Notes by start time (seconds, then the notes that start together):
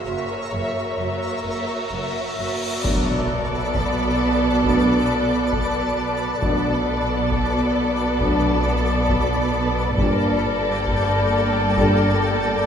Already playing: A#4 C#5 E5, cymbal swell
0.05 F#1 F#2 A#3 F#4 E5
0.52 F#1 F#2 A#3 F#4 E5
0.98 F#1 F#2 A#3 F#4 E5
1.45 F#1 F#2 A#3 F#4 E5
1.91 F#1 F#2 A#3 F#4 E5
2.38 F#1 F#2 A#3 F#4 E5
2.84 B1 B2 F#3 A3 B3 D4 A4 B4 D5 A5 D6 F#6, taiko, impact
3.75 taiko
4.63 B2 F#3 A3 D4, taiko
5.53 taiko
6.41 B1 B2 F#3 A3 B3 D4 A4 B4 D5 A5, taiko
7.32 taiko
8.20 B2 F#3 A3 D4, taiko
9.09 taiko
9.96 G1 G2 A#2 G3 A#3 D4 A4 D5 G5 B5 F6 A#6, taiko
10.88 taiko
11.76 A#2 G3 D4 A4, taiko